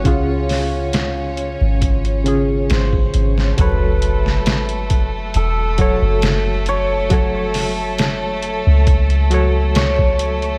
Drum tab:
HH |x-o-x-x-xxx-x-x-|x-x-xxx-x-x-x-x-|x-o-x-x-xxx-x-xx|
SD |--o-o-------o--o|---oo-------o---|--o-o-------o---|
BD |o-------o----o--|o-----o---o-----|o-------o----o--|